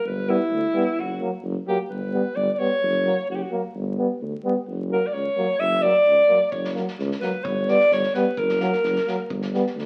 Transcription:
0.04 G1 B4
0.28 G3 B3 E4
0.51 D2
0.74 G3 B3
0.97 F#1 F#4
1.21 F#3 A#3
1.43 F#1
1.67 F#3 A#3 G4
1.89 G1 B4
2.12 G3 B3
2.35 G1 D5
2.54 D5
2.59 G3 B3 C#5
2.82 F#1
3.06 F#3 A#3
3.29 F#1 F#4
3.35 G4
3.42 F#4
3.51 F#3 A#3
3.75 G1
3.97 G3 B3
4.21 D2
4.44 G3 B3
4.67 F#1
4.90 F#3 A#3 A#4
5.07 D5
5.13 C#2 C#5
5.37 F#3 A#3
5.59 F#1 E5
5.82 F#3 A#3 D5
6.06 C#2
6.28 F#3 A#3
6.51 F#1 C#5, kick
6.64 snare
6.74 F#3 A#3, snare
6.88 snare
6.99 C#2, snare
7.11 snare
7.21 F#3 A#3 B4, snare
7.44 G1 C#5, kick
7.68 G3 B3 D5, snare
7.80 snare
7.91 G1 C#5, snare
8.03 snare
8.14 G3 B3 B4, snare
8.37 F#1 A#4, kick
8.49 snare
8.60 F#3 A#3, snare
8.72 snare
8.83 F#1, snare
8.96 snare
9.07 F#3 A#3, snare
9.30 G1, kick
9.42 snare
9.54 G3 B3, snare
9.67 snare
9.76 D2, snare

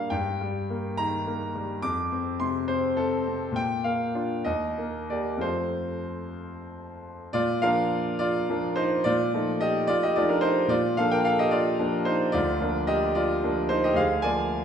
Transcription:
Already playing: A#2 G3 A#3 D4 F5 G5
0.10 G2 G5
0.41 G3
0.70 A#3
0.97 D#3 A#5
1.27 A#3
1.55 G3
1.82 F2 D6
2.12 C4
2.40 C3 C6
2.68 C4 C5
2.97 C3 A4
3.28 C4
3.52 A#2
3.56 G5
3.84 A#3 F5
4.15 D4 F4
4.45 D#2 D#5
4.78 A#3
5.10 A#3 G4 D5
5.37 F2 F3 A3 F4
5.41 C5
7.33 A#2 F4 D5
7.62 F3 A#3 D4 A#4 F5
8.19 F4 D5
8.50 F3 A#3 D4
8.76 D#4 C5
9.04 A#2 F4 D5
9.34 F3 A3 D#4
9.61 G4 D#5
9.87 F4 D5
10.03 G4 D#5
10.16 F3 A3 D#4 F4 D5
10.29 D4 A#4
10.41 D#4 C5
10.68 A#2 F4 D5
10.97 F3 A#3 D4 A4 F5
11.12 A#4 G5
11.25 A4 F5
11.39 G4 D#5
11.51 F4 D5
11.79 F3 A#3 D4
12.05 D#4 C5
12.32 D2 F4 D5
12.60 F3 A#3 D4
12.87 G4 D#5
13.15 F4 D5
13.44 F3 A#3 D4
13.69 D#4 C5
13.84 G4 D#5
13.94 D2 G#4 F5
14.22 F3 A#3 F4 D5 G#5

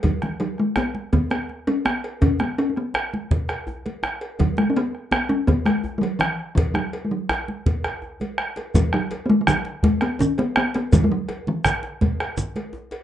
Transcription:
0.03 F#3, bombo low, cowbell, djembe bass, low conga
0.22 E3, bombo rim, djembe slap, high conga
0.40 F#3, bombo rim, cowbell
0.58 G#3, bombo rim
0.76 B3, bombo rim, cowbell, djembe slap, djembe tone, djembe bass
0.95 bombo rim, high conga
1.13 B3, bombo low, cowbell, high conga, low conga
1.30 B3, bombo rim, cowbell, djembe slap
1.49 bombo rim, high conga
1.67 C#4, cowbell, high conga
1.85 B3, bombo rim, djembe slap, djembe tone
2.04 bombo rim, cowbell
2.21 C#4, bombo low, cowbell, djembe bass, low conga
2.39 B3, bombo rim, djembe slap, high conga
2.58 C#4, bombo rim, cowbell, djembe slap
2.70 C#4
2.76 B3, bombo rim
2.94 bombo rim, cowbell, djembe slap, djembe tone
3.13 bombo rim, high conga
3.31 bombo low, cowbell, high conga, low conga
3.49 bombo rim, cowbell, djembe slap
3.67 bombo rim, high conga, djembe bass
3.86 cowbell, high conga
4.03 bombo rim, djembe slap, djembe tone
4.21 bombo rim, cowbell
4.39 F#3, bombo low, cowbell, djembe bass, low conga
4.57 G#3, bombo rim, djembe slap, high conga
4.70 C#4
4.75 B3, bombo rim, cowbell, djembe slap
4.95 bombo rim
5.11 B3, bombo rim, cowbell, djembe slap, djembe bass
5.29 C#4, bombo rim, high conga
5.47 B3, bombo low, cowbell, high conga, low conga
5.66 G#3, bombo rim, cowbell, djembe slap
5.84 bombo rim, high conga, djembe bass
5.98 F#3 G#3
6.03 cowbell, high conga
6.19 E3, bombo rim, djembe slap, djembe tone
6.39 bombo rim
6.55 E3, bombo low, cowbell, djembe bass, low conga
6.74 F#3, bombo rim, djembe slap, high conga
6.93 cowbell, high conga
7.05 G#3
7.11 F#3, djembe slap, high conga
7.29 bombo rim, cowbell, djembe slap, djembe tone, djembe bass
7.48 high conga
7.66 bombo low, cowbell, high conga, low conga
7.84 bombo rim, cowbell, djembe bass
8.02 bombo rim, djembe bass
8.20 cowbell, high conga, djembe bass
8.38 bombo rim, djembe slap, high conga
8.56 bombo rim, cowbell, djembe slap, high conga
8.74 E3, bombo low, cowbell, high conga, djembe bass, low conga, shekere
8.93 F#3, bombo rim
9.11 bombo rim, cowbell, djembe slap, high conga
9.26 G#3 B3
9.30 high conga
9.41 G#3
9.47 F#3, bombo rim, cowbell, djembe tone, djembe bass, low conga, shekere
9.65 bombo rim, djembe slap
9.83 G#3, bombo rim, bombo low, cowbell, high conga
10.01 B3, bombo rim, cowbell, high conga
10.19 C#4, djembe slap, high conga, djembe bass, low conga, shekere
10.38 B3, bombo rim, cowbell, high conga
10.56 B3, bombo rim, djembe tone
10.74 B3, cowbell, djembe slap
10.92 E3, bombo low, cowbell, high conga, djembe bass, low conga, shekere
11.04 G#3
11.12 F#3
11.28 bombo rim, cowbell, djembe slap, high conga
11.47 E3, high conga
11.65 bombo rim, cowbell, djembe tone, djembe bass, low conga, shekere
11.83 bombo rim, djembe slap
12.01 bombo rim, bombo low, cowbell, high conga
12.20 bombo rim, cowbell, high conga
12.37 djembe slap, high conga, djembe bass, low conga, shekere
12.56 bombo rim, cowbell, high conga
12.73 djembe tone
12.91 cowbell, djembe slap

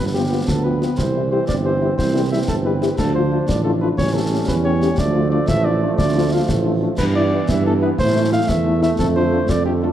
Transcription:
Already playing: G1
0.00 F3 B3
0.14 B3 F4 G4
0.31 B3 F4 G4
0.47 D2 A4, concert bass drum, snare
0.64 B3 F4 G4 B4
0.82 B3 F4 G4, snare
0.97 C2 E3 C4 C5, concert bass drum, snare
1.15 G3 E4 G4
1.31 G3 E4 G4 C5
1.48 G1 D5, concert bass drum, snare
1.64 G3 E4 G4 C5
1.81 G3 E4 G4
1.98 C2 C5, concert bass drum, snare
2.14 G3 E4 G4
2.31 G3 E4 G4 E5
2.48 G1 A4, concert bass drum, snare
2.65 G3 E4 G4 B4
2.81 G3 E4 G4, snare
2.98 D2 F3 D4 A4, concert bass drum, snare, crash
3.14 A3 D4 F4 C5
3.32 A3 D4 F4
3.48 A1 D5, concert bass drum, snare
3.64 A3 D4 F4 A4
3.81 A3 D4 F4 B4
3.97 A1 G3 C#4 C#5, concert bass drum, snare
4.14 A3 C#4 G4 A4
4.32 A3 C#4 G4
4.47 E2 B4, concert bass drum, snare
4.65 A3 C#4 G4 C#5
4.82 A3 C#4 G4, snare
4.97 D2 F3 A3 D5, concert bass drum, snare
5.15 A3 D4 F4
5.31 A3 D4 F4 D5
5.48 A1 E5, concert bass drum, snare
5.65 A3 D4 F4 D5
5.82 A3 D4 F4
5.98 D2 D5, concert bass drum, snare
6.15 A3 D4 F4
6.32 A3 D4 F4 F5
6.48 A1, concert bass drum, snare
6.65 A3 D4 F4
6.82 A3 D4 F4
6.98 G2 E3 B3 B4, concert bass drum, snare, crash
7.15 B3 E4 D5
7.32 B3 E4
7.49 G2 E5, concert bass drum, snare
7.65 B3 E4 A4
7.82 B3 E4 B4
7.98 A2 A3 C5, concert bass drum, snare
8.15 A3 E4
8.32 A3 E4 F5
8.48 E2 E5, concert bass drum, snare
8.66 A3 E4
8.82 A3 E4 E5, snare
8.98 F2 D3 A4, concert bass drum, snare
9.15 A3 D4 F4 C5
9.31 A3 D4 F4
9.48 F2 D5, concert bass drum, snare
9.65 A3 D4 F4 G4
9.81 A3 D4 F4 A4

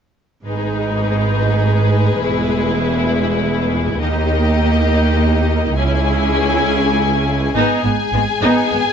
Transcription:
0.46 G#1 G#2 G#3 D#4 G#4 B4
2.23 E1 E2 E4
4.00 D#2 A#3 D#4 G4 D#5
5.76 C#2 C#4 E4 G#4 G#5
7.54 G#1 G#2 B3 D#4 G#4 G#5
7.84 G#1 G#2 B3
8.13 G#1 G#2 G#3 B3
8.42 G#1 G#2 B3 D#4
8.72 G#1 G#2 B3

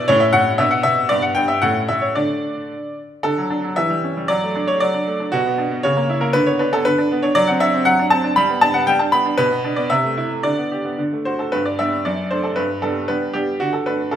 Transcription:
0.08 A2 C#4 E4 C#5
0.20 E5
0.33 A2 F#5
0.58 B2 B3 D4 E5
0.71 F#5
0.83 B2 E5
1.09 G2 B3 D4 D5
1.22 F#5
1.35 G2 G5
1.48 E5
1.62 A2 A3 C#4 F#5
1.88 A2 E5
2.01 C#5
2.15 D3 A3 D4 D5
3.23 D3 A4
3.38 F#3
3.50 D4
3.64 F#3
3.76 E3 E5
3.90 G3
4.04 C#4
4.17 G3
4.28 F#3 D5
4.43 A3
4.56 D4
4.68 A3 C#5
4.80 F#3 D5
4.94 D4
5.07 A3
5.20 D4
5.32 B2 F#4
5.46 B3
5.58 D4
5.71 B3
5.83 C#3 C#5
5.97 A#3
6.09 E4
6.21 A#3 A#4
6.33 D3 B4
6.46 B3 C#5
6.59 D4 B4
6.73 B3 A4
6.85 D3 B4
6.98 D4
7.12 B3
7.23 D4 C#5
7.35 F#3 D5
7.48 C4 F#5
7.60 D4 E5
7.74 C4
7.85 F#3 F#5
7.99 D4
8.10 C4 A5
8.24 D4
8.36 G3 B5
8.49 B3
8.61 D4 A5
8.74 B3 F#5
8.87 G3 G5
8.99 D4 A5
9.12 B3 B5
9.26 D4
9.38 B2 B4
9.51 B3
9.64 D4
9.76 B3 D5
9.90 C3 E5
10.04 A3
10.17 E4
10.31 A3
10.43 D3 D5
10.58 B3
10.72 G4
10.85 B3
10.98 D3
11.13 A3
11.25 F#4 C5
11.39 A3 A4
11.52 G2 B4
11.65 D5
11.79 G3 B3 D4 E5
12.05 F#2 D5
12.31 A3 D4 C5
12.43 A4
12.56 G2 B4
12.82 G3 B3 D4 A4
13.08 G3 B3 D4 B4
13.34 G3 B3 D4 G4
13.60 D3 F#4
13.73 A4
13.86 A3 D4 B4
14.11 C#3 A4

